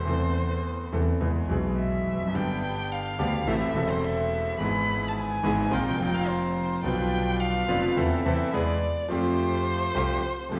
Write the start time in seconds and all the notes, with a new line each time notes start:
Already playing: C5
0.05 E2 E3 A3 C4
0.10 A4
0.92 E2 E3 A3 C4 A4
1.20 E2 E3 G#3 B3 G#4
1.48 B1 B2 E3 G#3 B3 G#4
1.78 E5
2.06 F1
2.13 E2
2.21 F2
2.27 F#2
2.33 G1 G2 D3 G3 B3 D4 G4 G5
2.37 G4
2.92 F5
3.18 D2 D3 G3 B3 D4 G4
3.47 A1 A2 E3 A3 C4 E4 A4 E5
3.73 E1 E2 E3 A3 C4 E4 A4
3.90 C5
4.04 E5
4.58 G#1 G#2 E3 G#3 B3 E4 G#4 B5
4.62 G#4
5.08 A5
5.18 G#5
5.43 G#1 G#2 E3 G#3 B3 E4 G#4
5.71 A#1 A#2 C3 F3 A#3 C4 F4 A#4 G5
5.98 F1 F2 C3 F3 A#3 C4 F4 A#4
6.14 F5
6.28 C5
6.83 B1 B2 D3 F3 B3 D4 F4 B4 G5
6.87 F4
7.40 F5
7.68 F1 F2 D3 F3 B3 D4 F4 B4
7.91 F5
7.96 E2 E3 A3 C4 E4 A4 E5
8.24 E2 E3 A3 C4 E4 A4
8.52 E2 E3 G#3 B3 E4 G#4 D5
9.08 F2 F3 A3 C4 F4 G4 C5
9.95 C2 C3 F3 A3 C4 F4 G4
10.49 F2 F3 A3 C4 F4 G4
10.53 G4